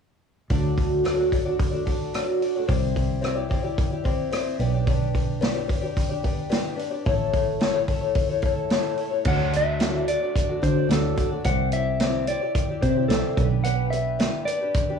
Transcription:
0.50 D2 D3 F#3 A3 D4 F#4 D5, kick, open hi-hat
0.78 kick, open hi-hat
1.04 D3 F#3 A3 D4 F#4 D5, cross-stick, open hi-hat
1.19 A3 D4 F#4 D5
1.32 A3 D4 F#4 D5, kick, open hi-hat
1.45 A3 D4 F#4 D5
1.59 kick, open hi-hat
1.71 A3 D4 F#4 D5
1.85 A3 D4 F#4 D5, kick, open hi-hat
2.13 D3 F#3 A3 D4 F#4 D5, cross-stick, open hi-hat
2.41 A3 D4 F#4 D5, open hi-hat
2.56 A3 D4 F#4 D5
2.67 C2 C4 E4 G4 D5, kick, open hi-hat
2.96 kick, open hi-hat
3.21 C4 E4 G4 D5, cross-stick, open hi-hat
3.35 E4 G4 D5
3.49 C4 E4 G4 D5, kick, open hi-hat
3.63 E4 G4 D5
3.78 kick, open hi-hat
3.90 E4 G4 D5
4.04 C4 E4 G4 D5, kick, open hi-hat
4.31 C4 E4 G4 D5, cross-stick, open hi-hat
4.59 B1 B3 D4 G4 D5, open hi-hat
4.74 D4 G4 D5
4.87 B3 D4 G4 D5, kick, open hi-hat
5.15 kick, open hi-hat
5.41 B3 D4 G4 D5, snare, open hi-hat
5.54 D4 G4 D5
5.68 B3 D4 G4 D5, kick, open hi-hat
5.82 D4 G4 D5
5.97 kick, open hi-hat
6.09 D4 G4 D5
6.23 B3 D4 G4 D5, kick, open hi-hat
6.49 B3 D4 G4 D5, snare, open hi-hat
6.76 B3 D4 G4 D5, open hi-hat
6.90 D4 G4 D5
7.05 A1 A3 E4 A4 C#5, kick, open hi-hat
7.33 kick, open hi-hat
7.60 A3 E4 A4 C#5, snare, open hi-hat
7.73 E4 A4 C#5
7.88 A3 E4 A4 C#5, kick, open hi-hat
8.01 E4 A4 C#5
8.15 kick, open hi-hat
8.29 E4 A4 C#5
8.42 A3 E4 A4 C#5, kick, open hi-hat
8.70 A3 E4 A4 C#5, snare, open hi-hat
8.97 A3 E4 A4 C#5, open hi-hat
9.11 E4 A4 C#5
9.25 D2 D3 F#3 A3 D4 F#4 D5 F#5, kick, crash
9.51 A3 D4 F#4 D5, closed hi-hat
9.57 E5
9.79 D3 F#3 A3 D4 F#4 D5, snare, closed hi-hat
10.08 A3 D4 F#4 D5, closed hi-hat
10.22 A3 D4 F#4 D5
10.36 kick, closed hi-hat
10.48 A3 D4 F#4 D5
10.62 D3 A3 D4 F#4 C5 D5, kick, closed hi-hat
10.76 A3 D4 F#4 D5
10.89 D2 D3 F#3 A3 D4 F#4 A4 D5, snare, closed hi-hat
11.16 A3 D4 F#4 D5, kick, closed hi-hat
11.31 A3 D4 F#4 D5
11.44 C2 C4 E4 G4 D5 F#5, kick, closed hi-hat
11.72 C4 E4 G4 D5 E5, closed hi-hat
12.00 C4 E4 G4 D5, snare, closed hi-hat
12.27 C4 E4 G4 D5, closed hi-hat
12.41 E4 G4 D5
12.55 kick, closed hi-hat
12.69 E4 G4 D5
12.82 C3 C4 E4 G4 C5 D5, kick, closed hi-hat
12.96 E4 G4 D5
13.08 C2 C4 E4 G4 A4 D5, snare, closed hi-hat
13.37 B1 B3 D4 G4, kick, closed hi-hat
13.41 B4
13.64 B3 D4 G4 B4 F#5, closed hi-hat
13.90 B3 D4 G4 E5, closed hi-hat
13.94 B4
14.19 B3 D4 G4 B4, snare, closed hi-hat
14.45 B3 D4 G4 B4 D5, closed hi-hat
14.61 D4 G4 B4
14.74 kick, closed hi-hat
14.89 D4 G4 B4

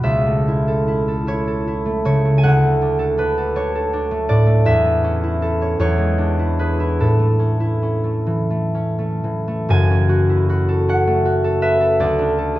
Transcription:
Already playing: E4
0.03 C#2 E5
0.26 A3
0.48 E4
0.68 A4
0.88 E4
1.08 A4
1.27 E4 C#5
1.47 A4
1.68 E4
1.86 A3
2.05 C#3 C#5
2.25 A3
2.38 G#5
2.43 D2 F#5
2.63 A3
2.82 D4
2.99 A4
3.18 D4 B4
3.38 A4
3.55 D4 C#5
3.75 A4
3.93 D4
4.11 A3
4.29 A2 D5
4.47 A3
4.65 E2 E5
4.85 A3
5.04 C#4
5.23 E4
5.42 A4
5.62 C#5
5.79 E2 C#5
5.98 G#3
6.18 D4
6.39 E4
6.59 G#4 B4
6.80 E4
7.00 A2 A4
7.19 A3
7.39 C#4
7.60 E4
7.82 C#4
8.04 A3
8.27 E3
8.50 A3
8.74 C#4
8.99 A3
9.24 E3
9.48 A3
9.69 F#1 F#2 G#5
9.90 C#4
10.09 F#4
10.29 E4
10.49 F#4
10.69 A4
10.89 C#4 F#5
11.07 A3
11.25 F#4
11.44 A4
11.62 B4 E5
11.80 A4
12.00 D2 D5
12.19 D4
12.38 A4
12.56 G#4

